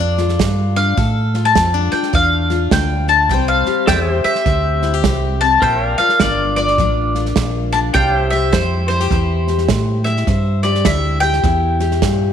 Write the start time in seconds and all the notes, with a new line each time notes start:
Already playing: F2 A2 F4 A4 D5 F5
0.00 D4
0.18 F4, snare
0.29 snare
0.39 G2 A3, kick, snare, hi-hat pedal
0.76 D4 F5, snare
0.97 A2 D3 A4, kick, snare
1.34 F4, snare
1.45 A5, snare
1.55 F2 A3 C4, kick, snare, hi-hat pedal
1.74 D4
1.92 F4 G5, muted fingered electric bass stroke, snare
2.03 snare
2.13 E2 A2 D4 F5, kick, snare
2.50 F4, snare
2.71 D2 A3 G5, kick, snare, hi-hat pedal
3.08 D4 A5, snare
3.29 C2 C3 G3 C4 G4 G5, kick, snare
3.34 C5
3.48 F5
3.66 G4, muted fingered electric bass stroke, snare
3.87 E2 G3 C4 A4 D5 E5 G5, kick, snare, hi-hat pedal
4.12 G4 C5
4.24 G4 E5, muted fingered electric bass stroke, snare
4.35 snare
4.46 D2 C3 C4, kick, snare
4.82 E4, snare
4.94 G4
5.04 C2 G3, kick, snare, hi-hat pedal
5.40 C4 A5, snare
5.62 A#1 A#2 A#4 C5 E5 G5, kick, snare
5.84 D5 F5
5.98 F4 F5, snare
6.09 snare
6.20 G1 A#3 D4 D5, kick, snare, hi-hat pedal
6.56 F4 D5, snare
6.68 snare
6.78 A1 F3 D4, kick, snare
7.15 F4, snare
7.26 snare
7.36 A#1 A#3, kick, snare, hi-hat pedal
7.72 D4 A5, snare
7.94 C2 C3 G4 C5 D5 F5 G5, kick, snare
8.16 C5 E5
8.30 G4 E5, snare
8.52 F2 G3 E4 C5, kick, snare, hi-hat pedal
8.88 E4 C5, snare
9.00 G4, snare
9.10 E2 C3 E4, kick, snare
9.47 G4, snare
9.58 snare
9.69 A2 G3, kick, snare, hi-hat pedal
10.04 E4 E5, snare
10.17 snare
10.27 G2 C3 C5, kick, snare
10.63 G4 D5, snare
10.75 snare
10.85 D2 G3 E4 E5, kick, snare, hi-hat pedal
11.20 G4 G5, snare
11.33 snare
11.43 E2 C3 E4, kick, snare
11.80 G4, snare
11.91 snare
12.02 G2 A#2, kick, snare, hi-hat pedal